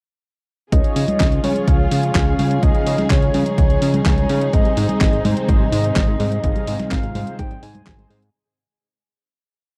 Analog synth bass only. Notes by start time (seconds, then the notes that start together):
0.72 C#2
0.96 C#3
1.20 C#2
1.44 C#3
1.68 C#2
1.92 C#3
2.15 C#2
2.39 C#3
2.63 C#2
2.87 C#3
3.10 C#2
3.34 C#3
3.58 C#2
3.82 C#3
4.06 C#2
4.30 C#3
4.53 G#1
4.77 G#2
5.01 G#1
5.25 G#2
5.49 G#1
5.72 G#2
5.96 G#1
6.20 G#2
6.44 G#1
6.68 G#2
6.91 G#1
7.15 G#2
7.39 G#1
7.63 G#2
7.87 G#1
8.10 G#2